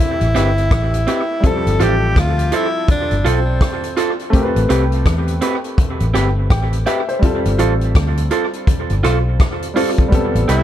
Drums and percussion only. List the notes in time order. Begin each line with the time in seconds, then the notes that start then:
0.21 closed hi-hat
0.36 cross-stick, closed hi-hat
0.58 closed hi-hat
0.71 kick, cross-stick, closed hi-hat
0.94 closed hi-hat
1.07 closed hi-hat
1.44 kick, closed hi-hat
1.67 closed hi-hat
1.80 closed hi-hat
2.16 kick, cross-stick, closed hi-hat
2.39 closed hi-hat
2.52 closed hi-hat
2.88 kick, closed hi-hat
3.11 closed hi-hat
3.26 closed hi-hat
3.61 kick, cross-stick, closed hi-hat
3.84 closed hi-hat
3.97 closed hi-hat
4.19 closed hi-hat
4.33 kick, closed hi-hat
4.56 closed hi-hat
4.70 closed hi-hat
4.92 closed hi-hat
5.06 kick, cross-stick, closed hi-hat
5.28 closed hi-hat
5.41 closed hi-hat
5.64 closed hi-hat
5.78 kick, closed hi-hat
6.00 closed hi-hat
6.15 cross-stick, closed hi-hat
6.50 kick, cross-stick, closed hi-hat
6.73 closed hi-hat
6.86 closed hi-hat
7.09 closed hi-hat
7.23 kick, closed hi-hat
7.45 closed hi-hat
7.59 closed hi-hat
7.81 closed hi-hat
7.95 kick, cross-stick, closed hi-hat
8.17 closed hi-hat
8.31 closed hi-hat
8.53 closed hi-hat
8.67 kick, closed hi-hat
8.90 closed hi-hat
9.04 cross-stick, closed hi-hat
9.40 kick, cross-stick, closed hi-hat
9.62 closed hi-hat
9.76 open hi-hat
9.98 kick, closed hi-hat
10.12 kick, closed hi-hat
10.35 closed hi-hat
10.49 closed hi-hat